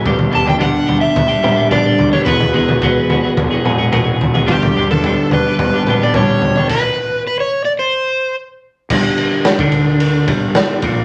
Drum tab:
CC |----------------|----------------|----------------|x---------------|
RD |----------------|----------------|----------------|----------------|
SD |----------------|----------------|----------------|----------------|
T2 |----------o-o---|----------o-o---|----------o-o---|----------------|
FT |ooooo-o-o-----oo|ooooo-o-o-----oo|ooooo-o-o-----oo|----------------|
BD |o---o---o---o---|o---o---o---o---|o---o---o---o---|o---------------|

CC |x---------------|
RD |--x-x-x-x-x-x-x-|
SD |----o-------o---|
T2 |----------------|
FT |----------------|
BD |o----o----o---o-|